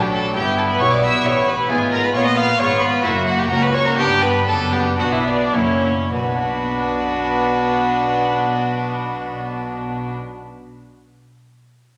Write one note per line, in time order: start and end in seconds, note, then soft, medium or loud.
0.00 0.36 A1 medium
0.00 0.31 A2 medium
0.00 0.36 A2 medium
0.00 0.34 F#3 medium
0.00 0.31 B3 medium
0.00 0.32 D4 medium
0.00 0.34 D4 medium
0.00 0.32 F#4 medium
0.00 0.12 G4 medium
0.00 0.13 G5 medium
0.12 0.35 A4 medium
0.12 0.35 A5 loud
0.34 0.80 G1 medium
0.34 0.80 G2 medium
0.34 0.77 G2 medium
0.34 1.69 B3 medium
0.34 1.68 E4 medium
0.34 0.60 G4 medium
0.34 0.57 G5 loud
0.57 0.69 A4 medium
0.57 0.62 A5 medium
0.69 0.82 B4 medium
0.69 0.80 B5 loud
0.79 1.24 B1 medium
0.79 1.21 B2 medium
0.79 1.25 B2 medium
0.79 1.22 B3 medium
0.79 1.22 E4 medium
0.79 1.22 G4 medium
0.79 0.94 C#5 loud
0.79 0.91 C#6 loud
0.91 1.05 D5 medium
0.91 1.03 D6 medium
1.01 1.27 E5 medium
1.01 1.24 E6 loud
1.23 1.69 A1 medium
1.23 1.66 A2 medium
1.23 1.70 A2 medium
1.23 1.66 B3 medium
1.23 1.67 E4 medium
1.23 1.67 G4 medium
1.23 1.50 C#5 loud
1.23 1.47 C#6 loud
1.47 1.71 B4 medium
1.47 1.70 B5 loud
1.69 2.15 G#1 medium
1.69 2.11 G#2 medium
1.69 2.15 G#2 medium
1.69 2.14 G#3 medium
1.69 2.14 B3 medium
1.69 2.14 F4 medium
1.69 1.79 G#4 medium
1.69 1.92 G#5 loud
1.92 2.04 A#4 medium
1.92 2.03 A#5 loud
2.04 2.09 B4 medium
2.04 2.15 B5 loud
2.14 2.59 A#1 medium
2.14 2.56 A#2 medium
2.14 2.59 A#2 medium
2.14 2.56 B3 medium
2.14 2.59 B3 medium
2.14 2.56 C#4 medium
2.14 2.58 F4 medium
2.14 2.56 F4 medium
2.14 2.25 C#5 loud
2.14 2.19 C#6 loud
2.26 2.38 D#5 medium
2.26 2.37 D#6 loud
2.36 2.60 F5 loud
2.36 2.59 F6 loud
2.59 3.04 G#1 medium
2.59 3.04 G#2 medium
2.59 3.01 G#2 medium
2.59 3.04 B3 medium
2.59 3.01 B3 medium
2.59 3.02 C#4 medium
2.59 3.04 F4 medium
2.59 3.02 F4 medium
2.59 2.83 C#5 loud
2.59 2.81 C#6 loud
2.81 3.04 B4 medium
2.81 3.04 B5 loud
3.03 3.50 F#1 medium
3.03 3.47 F#2 medium
3.03 3.51 F#2 medium
3.03 3.51 A#3 medium
3.03 3.12 E4 medium
3.03 3.50 F#4 medium
3.03 3.27 E5 loud
3.26 3.40 F#4 medium
3.26 3.38 F#5 medium
3.38 3.50 G4 medium
3.38 3.51 G5 loud
3.50 3.98 C#2 medium
3.50 3.95 A#3 medium
3.50 3.98 A#3 medium
3.50 3.95 C#4 medium
3.50 3.98 F#4 medium
3.50 3.95 F#4 medium
3.50 3.64 A#4 medium
3.50 3.62 A#5 loud
3.62 3.75 B4 medium
3.62 3.74 B5 loud
3.74 3.87 C#5 medium
3.74 3.86 C#6 loud
3.85 3.96 A#4 medium
3.85 3.99 A#5 loud
3.97 4.47 G1 medium
3.97 4.44 G2 medium
3.97 4.47 G2 medium
3.97 4.44 B3 medium
3.97 4.47 B3 medium
3.97 4.47 D4 medium
3.97 4.44 D4 medium
3.97 4.23 G4 loud
3.97 4.22 G5 loud
4.22 4.46 B4 medium
4.22 4.48 B5 loud
4.47 4.99 F#1 medium
4.47 4.96 F#2 medium
4.47 4.99 F#2 medium
4.47 4.98 B3 medium
4.47 4.98 D4 medium
4.47 4.74 A4 medium
4.47 4.56 A5 loud
4.73 4.98 G4 medium
4.73 4.81 G5 medium
4.98 5.54 B1 medium
4.98 5.51 B2 medium
4.98 5.54 B2 medium
4.98 5.50 B3 medium
4.98 5.54 B3 medium
4.98 5.53 D4 medium
4.98 5.51 D4 medium
4.98 5.13 F#4 medium
4.98 5.05 F#5 loud
5.12 5.26 E4 medium
5.12 5.27 E5 medium
5.25 5.55 D4 medium
5.25 5.55 D5 loud
5.53 6.12 F#1 medium
5.53 6.10 F#2 medium
5.53 6.12 F#2 medium
5.53 6.10 A#3 medium
5.53 5.87 A#3 medium
5.53 6.12 C#4 medium
5.53 6.10 C#4 medium
5.53 5.87 E4 medium
5.53 6.10 E4 medium
5.53 6.14 C#5 medium
6.13 10.14 B1 medium
6.13 10.13 B2 medium
6.13 10.14 B2 medium
6.13 10.14 B3 medium
6.13 10.13 D4 medium
6.13 10.13 F#4 medium
6.13 10.14 B4 loud
6.20 10.21 B3 medium
6.27 6.34 D4 medium
6.34 10.35 F#4 medium
6.41 10.41 D5 medium